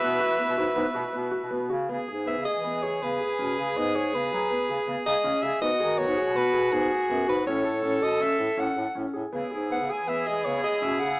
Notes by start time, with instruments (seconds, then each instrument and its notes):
Already playing: woodwind section B3 E4 F#4, viola B4, soprano saxophone E5
0.01 bass clarinet B2, grand piano B3
0.20 grand piano F#4
0.38 grand piano B3
0.49 bass clarinet B2
0.57 bass clarinet G#2, grand piano F#4
0.76 bass clarinet G#2, grand piano B3
0.94 bass clarinet B2, grand piano F#4
1.13 bass clarinet B2, grand piano B3
1.31 grand piano F#4
1.43 bass clarinet B2
1.51 bass clarinet B2, grand piano B3
1.70 bass clarinet C#3, grand piano F#4
1.89 bass clarinet C#3, grand piano B3, viola G#4
2.08 bass clarinet G#2, grand piano G#4
2.26 grand piano B3, soprano saxophone E5
2.38 bass clarinet C#3
2.45 grand piano G#4, soprano saxophone D#5
2.56 bass clarinet E3
2.64 grand piano B3
2.83 grand piano G#4, soprano saxophone C#5
3.02 bass clarinet C#3, grand piano B3, soprano saxophone B4
3.20 grand piano G#4
3.39 bass clarinet B2, grand piano C#4
3.58 bass clarinet C#3, grand piano G#4
3.76 bass clarinet G#2, grand piano B3, soprano saxophone D#5
3.94 grand piano G#4, soprano saxophone C#5
4.13 bass clarinet C#3, grand piano B3, soprano saxophone B4
4.32 bass clarinet F#3, grand piano G#4
4.50 grand piano B3
4.69 bass clarinet C#3, grand piano G#4
4.87 bass clarinet C#3, grand piano B3
5.06 bass clarinet C#3, grand piano G#4, soprano saxophone D#5
5.24 bass clarinet C#3, grand piano C#4
5.42 bass clarinet C#3, grand piano G#4, soprano saxophone E5
5.61 bass clarinet G#2, grand piano B3, viola F#4, soprano saxophone D#5
5.80 bass clarinet D#3, grand piano G#4
5.98 grand piano B3, soprano saxophone C#5
6.07 bass clarinet G#2
6.16 grand piano G#4
6.25 bass clarinet B2
6.35 grand piano B3, soprano saxophone B4
6.53 grand piano G#4
6.71 bass clarinet G#2, grand piano B3, soprano saxophone G#4
6.92 grand piano G#4
7.08 bass clarinet F#2, grand piano B3
7.27 bass clarinet G#2, grand piano F#4, soprano saxophone B4
7.46 bass clarinet A2, grand piano C#4, viola A4, soprano saxophone C#5
7.64 grand piano A4
7.83 bass clarinet A2, grand piano C#4
8.02 bass clarinet B2, grand piano A4, soprano saxophone D#5
8.20 grand piano C#4, soprano saxophone E5
8.38 bass clarinet A2, grand piano A4
8.57 bass clarinet A2, grand piano C#4, soprano saxophone F#5
8.76 bass clarinet A2, grand piano A4
8.95 bass clarinet A2, grand piano C#4
9.14 bass clarinet A2, grand piano G#4
9.33 bass clarinet C#3, woodwind section C#3 B3 E4, grand piano B3, viola G#4
9.51 bass clarinet G#2, grand piano G#4
9.70 grand piano B3, soprano saxophone F#5
9.81 bass clarinet C#3
9.89 grand piano G#4, soprano saxophone G#5
10.00 bass clarinet E3
10.07 grand piano B3, soprano saxophone E5
10.27 grand piano G#4, soprano saxophone D#5
10.45 bass clarinet C#3, grand piano B3, soprano saxophone C#5
10.63 grand piano G#4, soprano saxophone D#5
10.82 bass clarinet B2, grand piano C#4, soprano saxophone E5
11.00 bass clarinet C#3, grand piano G#4, soprano saxophone F#5